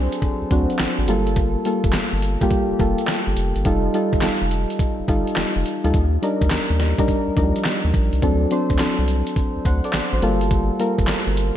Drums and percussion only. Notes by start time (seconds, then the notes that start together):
0.12 closed hi-hat
0.22 kick, closed hi-hat
0.51 kick, closed hi-hat
0.70 closed hi-hat
0.79 snare, clap, closed hi-hat
1.08 closed hi-hat
1.27 closed hi-hat
1.36 kick, closed hi-hat
1.65 closed hi-hat
1.84 kick, closed hi-hat
1.92 snare, clap, closed hi-hat
2.22 closed hi-hat
2.41 kick, closed hi-hat
2.51 kick, closed hi-hat
2.79 kick, closed hi-hat
2.98 closed hi-hat
3.07 snare, clap, closed hi-hat
3.37 closed hi-hat
3.56 closed hi-hat
3.65 kick, closed hi-hat
3.94 closed hi-hat
4.13 kick, closed hi-hat
4.21 snare, clap, closed hi-hat
4.51 closed hi-hat
4.70 closed hi-hat
4.79 kick, closed hi-hat
5.08 kick, closed hi-hat
5.27 closed hi-hat
5.36 snare, clap, closed hi-hat
5.66 closed hi-hat
5.84 closed hi-hat
5.94 kick, closed hi-hat
6.23 closed hi-hat
6.41 kick, closed hi-hat
6.50 snare, clap, closed hi-hat
6.80 snare, closed hi-hat
6.99 kick, closed hi-hat
7.08 kick, closed hi-hat
7.37 kick, closed hi-hat
7.56 closed hi-hat
7.64 snare, clap, closed hi-hat
7.94 kick, closed hi-hat
8.13 closed hi-hat
8.22 kick, closed hi-hat
8.51 closed hi-hat
8.70 kick, closed hi-hat
8.78 snare, clap, closed hi-hat
9.08 closed hi-hat
9.27 closed hi-hat
9.36 kick, closed hi-hat
9.65 kick, closed hi-hat
9.84 closed hi-hat
9.93 snare, clap, closed hi-hat
10.22 closed hi-hat
10.41 closed hi-hat
10.51 kick, closed hi-hat
10.80 closed hi-hat
10.98 kick, closed hi-hat
11.07 snare, clap, closed hi-hat
11.37 closed hi-hat